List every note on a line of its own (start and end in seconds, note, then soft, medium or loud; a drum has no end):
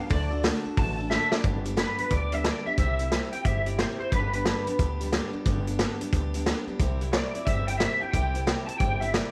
0.00 0.10 G4 medium
0.00 0.10 F5 medium
0.10 0.49 D2 medium
0.10 0.31 D3 medium
0.10 0.31 A3 medium
0.10 0.31 D4 medium
0.10 0.30 F#4 medium
0.10 0.29 A4 medium
0.10 0.43 D5 loud
0.10 kick loud
0.10 open hi-hat medium
0.31 0.43 D4 soft
0.31 0.43 F#4 soft
0.31 0.44 A4 medium
0.43 0.65 D3 medium
0.43 0.65 A3 loud
0.43 0.65 D4 loud
0.43 0.64 F#4 medium
0.43 0.63 A4 medium
0.43 snare loud
0.43 open hi-hat medium
0.65 0.76 D4 medium
0.65 0.77 F#4 medium
0.65 0.77 A4 medium
0.65 muted upright bass stroke medium
0.77 1.16 A1 loud
0.77 0.98 A3 medium
0.77 0.99 D4 medium
0.77 0.98 F#4 medium
0.77 0.97 A4 medium
0.77 1.10 A5 loud
0.77 kick loud
0.77 open hi-hat medium
0.99 1.10 D4 medium
0.99 1.10 F#4 medium
0.99 1.11 A4 medium
1.10 1.32 D3 medium
1.10 1.32 A3 medium
1.10 1.32 D4 medium
1.10 1.31 F#4 medium
1.10 1.30 A4 medium
1.10 1.31 E5 medium
1.10 snare medium
1.31 1.43 D4 medium
1.31 1.44 F#4 medium
1.31 1.44 A4 medium
1.31 1.44 D5 loud
1.31 muted upright bass stroke medium
1.31 snare loud
1.44 1.82 G1 medium
1.44 1.65 G2 medium
1.44 1.65 D3 medium
1.44 1.65 G3 medium
1.44 1.65 B3 medium
1.44 1.64 D4 medium
1.44 1.64 G4 medium
1.44 kick loud
1.44 closed hi-hat medium
1.65 1.76 G3 medium
1.65 1.76 B3 soft
1.65 1.76 D4 medium
1.65 1.76 G4 medium
1.65 closed hi-hat medium
1.76 1.98 G2 medium
1.76 1.98 D3 medium
1.76 1.99 G3 medium
1.76 1.98 B3 medium
1.76 1.97 D4 medium
1.76 1.97 G4 medium
1.76 2.13 B4 medium
1.76 snare loud
1.76 closed hi-hat medium
1.98 2.09 G3 soft
1.98 2.10 B3 medium
1.98 2.11 D4 medium
1.98 2.11 G4 medium
1.98 muted upright bass stroke medium
1.98 closed hi-hat medium
2.10 2.49 D2 medium
2.10 2.32 G3 medium
2.10 2.32 B3 medium
2.10 2.31 D4 medium
2.10 2.31 G4 medium
2.10 2.33 D5 medium
2.10 kick loud
2.10 closed hi-hat medium
2.32 2.45 G3 soft
2.32 2.45 B3 medium
2.32 2.45 D4 medium
2.32 2.44 G4 medium
2.32 2.46 E5 medium
2.32 closed hi-hat medium
2.44 2.66 G2 medium
2.44 2.66 D3 medium
2.44 2.66 G3 medium
2.44 2.66 B3 medium
2.44 2.66 D4 medium
2.44 2.65 G4 medium
2.44 2.66 D5 medium
2.44 snare loud
2.44 closed hi-hat medium
2.65 2.78 G3 soft
2.65 2.78 B3 medium
2.65 2.79 D4 medium
2.65 2.78 G4 medium
2.65 2.71 E5 medium
2.65 muted upright bass stroke medium
2.77 3.16 C2 medium
2.77 2.99 C3 medium
2.77 3.00 G3 medium
2.77 3.00 C4 medium
2.77 3.00 E4 medium
2.77 2.98 G4 medium
2.77 3.32 E5 loud
2.77 kick loud
2.77 closed hi-hat medium
2.99 3.12 C4 soft
2.99 3.12 E4 soft
2.99 3.12 G4 medium
2.99 closed hi-hat medium
3.12 3.33 C3 medium
3.12 3.33 G3 medium
3.12 3.33 C4 medium
3.12 3.32 E4 medium
3.12 3.31 G4 medium
3.12 snare loud
3.12 closed hi-hat medium
3.32 3.44 C4 soft
3.32 3.45 E4 soft
3.32 3.45 G4 soft
3.32 3.44 G5 medium
3.32 closed hi-hat medium
3.44 3.83 G1 medium
3.44 3.66 G3 medium
3.44 3.67 C4 medium
3.44 3.67 E4 medium
3.44 3.65 G4 medium
3.44 3.66 E5 loud
3.44 kick loud
3.44 closed hi-hat medium
3.66 3.78 C4 medium
3.66 3.78 E4 medium
3.66 3.79 G4 medium
3.66 3.79 D5 loud
3.66 closed hi-hat medium
3.79 4.00 C3 medium
3.79 4.00 G3 medium
3.79 4.00 C4 medium
3.79 4.00 E4 medium
3.79 3.99 G4 medium
3.79 3.84 C5 medium
3.79 snare loud
3.79 closed hi-hat medium
3.99 4.13 C4 soft
3.99 4.13 E4 medium
3.99 4.12 G4 medium
3.99 4.11 C5 medium
3.99 muted upright bass stroke medium
4.12 4.50 G1 medium
4.12 4.34 G2 medium
4.12 4.34 D3 medium
4.12 4.34 G3 medium
4.12 4.34 B3 medium
4.12 4.33 D4 medium
4.12 4.32 G4 medium
4.12 5.08 B4 medium
4.12 kick loud
4.12 closed hi-hat medium
4.33 4.45 G3 soft
4.33 4.45 B3 soft
4.33 4.46 D4 soft
4.33 4.46 G4 medium
4.33 closed hi-hat medium
4.45 4.67 G2 medium
4.45 4.67 D3 medium
4.45 4.67 G3 medium
4.45 4.67 B3 medium
4.45 4.67 D4 medium
4.45 4.66 G4 medium
4.45 snare loud
4.45 closed hi-hat medium
4.66 4.78 G3 soft
4.66 4.79 B3 medium
4.66 4.79 D4 medium
4.66 4.79 G4 medium
4.66 muted upright bass stroke medium
4.66 closed hi-hat medium
4.79 5.17 D2 medium
4.79 5.00 G3 medium
4.79 5.01 B3 medium
4.79 5.00 D4 medium
4.79 4.99 G4 medium
4.79 kick loud
4.79 closed hi-hat medium
5.00 5.12 G3 soft
5.00 5.12 B3 medium
5.00 5.12 D4 medium
5.00 5.13 G4 medium
5.00 closed hi-hat medium
5.12 5.34 G2 medium
5.12 5.34 D3 medium
5.12 5.33 G3 medium
5.12 5.33 B3 medium
5.12 5.32 D4 medium
5.12 5.32 G4 medium
5.12 snare loud
5.12 closed hi-hat medium
5.33 5.45 G3 medium
5.33 5.45 B3 medium
5.33 5.45 D4 medium
5.33 5.46 G4 medium
5.33 muted upright bass stroke medium
5.45 5.84 G1 medium
5.45 5.67 G2 medium
5.45 5.67 D3 medium
5.45 5.67 G3 medium
5.45 5.67 B3 loud
5.45 5.67 D4 medium
5.45 5.66 G4 loud
5.45 kick loud
5.45 closed hi-hat medium
5.67 5.79 G3 soft
5.67 5.79 B3 medium
5.67 5.79 D4 soft
5.67 5.79 G4 medium
5.67 closed hi-hat medium
5.79 6.00 G2 medium
5.79 6.01 D3 medium
5.79 6.01 G3 medium
5.79 6.00 B3 medium
5.79 6.00 D4 medium
5.79 5.99 G4 loud
5.79 snare loud
5.79 closed hi-hat medium
6.00 6.12 G3 soft
6.00 6.12 B3 medium
6.00 6.13 D4 medium
6.00 6.13 G4 medium
6.00 muted upright bass stroke medium
6.00 closed hi-hat medium
6.13 6.51 D2 medium
6.13 6.34 G3 medium
6.13 6.34 B3 medium
6.13 6.34 D4 medium
6.13 6.33 G4 medium
6.13 kick loud
6.13 closed hi-hat medium
6.34 6.46 G3 soft
6.34 6.46 B3 medium
6.34 6.46 D4 medium
6.34 6.46 G4 medium
6.34 closed hi-hat medium
6.46 6.67 G2 medium
6.46 6.68 D3 medium
6.46 6.68 G3 medium
6.46 6.68 B3 medium
6.46 6.67 D4 medium
6.46 6.66 G4 medium
6.46 snare loud
6.46 closed hi-hat medium
6.66 6.79 G3 medium
6.66 6.80 B3 medium
6.66 6.80 D4 medium
6.66 6.80 G4 medium
6.66 muted upright bass stroke medium
6.80 7.18 C2 medium
6.80 7.01 C3 medium
6.80 7.01 G3 medium
6.80 7.01 C4 medium
6.80 7.01 E4 medium
6.80 7.00 G4 medium
6.80 kick loud
6.80 closed hi-hat medium
7.01 7.13 C4 soft
7.01 7.13 E4 soft
7.01 7.13 G4 medium
7.01 closed hi-hat medium
7.13 7.34 C3 medium
7.13 7.35 G3 medium
7.13 7.35 C4 medium
7.13 7.34 E4 medium
7.13 7.34 G4 medium
7.13 7.44 D5 medium
7.13 snare loud
7.13 closed hi-hat medium
7.34 7.46 C4 soft
7.34 7.46 E4 medium
7.34 7.47 G4 medium
7.34 muted upright bass stroke medium
7.34 closed hi-hat medium
7.45 7.85 G1 medium
7.45 7.68 G3 medium
7.45 7.68 C4 medium
7.45 7.67 G4 medium
7.45 7.67 E5 medium
7.45 kick loud
7.45 closed hi-hat medium
7.67 7.80 C4 soft
7.67 7.81 E4 medium
7.67 7.80 G4 medium
7.67 7.77 G5 loud
7.67 closed hi-hat medium
7.77 8.02 C3 medium
7.77 8.02 G3 medium
7.77 8.00 E5 medium
7.77 snare loud
7.77 closed hi-hat medium
7.82 8.02 C4 medium
7.82 8.01 E4 medium
7.82 8.00 G4 medium
8.00 8.14 C4 soft
8.00 8.14 E4 medium
8.00 8.14 G4 medium
8.00 8.10 G5 medium
8.00 muted upright bass stroke medium
8.11 8.52 C2 medium
8.11 8.35 C3 medium
8.11 8.35 G3 medium
8.11 8.66 G5 loud
8.11 kick loud
8.11 closed hi-hat medium
8.15 8.35 C4 medium
8.15 8.34 E4 medium
8.15 8.33 G4 medium
8.34 8.46 C4 soft
8.34 8.46 E4 soft
8.34 8.47 G4 medium
8.34 closed hi-hat medium
8.47 8.68 C3 medium
8.47 8.68 G3 medium
8.47 8.68 C4 medium
8.47 8.67 E4 medium
8.47 8.66 G4 medium
8.47 snare loud
8.47 closed hi-hat medium
8.66 8.79 C4 soft
8.66 8.79 E4 soft
8.66 8.80 G4 medium
8.66 8.77 A5 medium
8.66 muted upright bass stroke medium
8.66 closed hi-hat medium
8.78 9.18 G1 medium
8.78 9.01 G3 medium
8.78 9.01 C4 medium
8.78 9.01 E4 medium
8.78 9.00 G4 medium
8.78 9.00 G5 loud
8.78 kick loud
8.78 closed hi-hat medium
9.00 9.13 C4 soft
9.00 9.14 E4 medium
9.00 9.13 G4 medium
9.00 9.13 E5 loud
9.00 closed hi-hat medium
9.13 9.31 C3 medium
9.13 9.31 G3 medium
9.13 9.31 C4 medium
9.13 9.31 E4 medium
9.13 9.31 G4 medium
9.13 9.31 D5 medium
9.13 snare loud
9.13 closed hi-hat medium